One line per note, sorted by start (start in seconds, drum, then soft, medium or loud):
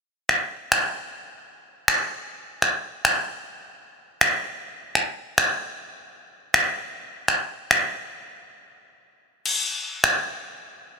0.29 finger snap medium
0.72 finger snap loud
1.88 finger snap loud
2.62 finger snap medium
3.05 finger snap medium
4.21 finger snap loud
4.95 finger snap medium
5.38 finger snap medium
6.54 finger snap loud
7.28 finger snap medium
7.71 finger snap medium
9.46 crash medium
10.04 finger snap loud